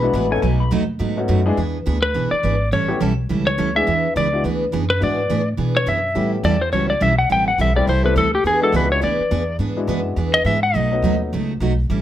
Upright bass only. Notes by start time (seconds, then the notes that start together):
Already playing: B1
0.13 A1
0.42 B1
0.71 D#2
1.00 G#2
1.29 F#2
1.57 E2
1.87 D2
2.15 B1
2.32 muted upright bass stroke
2.43 G#1
2.73 A1
3.01 B1
3.30 C#2
3.58 D2
3.87 E2
4.16 C#2
4.44 D2
4.73 F#2
5.02 G#2
5.30 A2
5.58 B2
5.87 F#2
6.16 A2
6.44 E2
6.73 C#2
7.01 B1
7.30 A1
7.58 B1
7.87 C2
8.16 D2
8.44 E2
8.72 C#2
9.03 D2
9.20 muted upright bass stroke
9.31 E2
9.59 G#2
9.87 F#2
10.16 E2
10.45 G#2
10.74 B1
11.02 D#2
11.33 C#2
11.60 B1
11.90 A1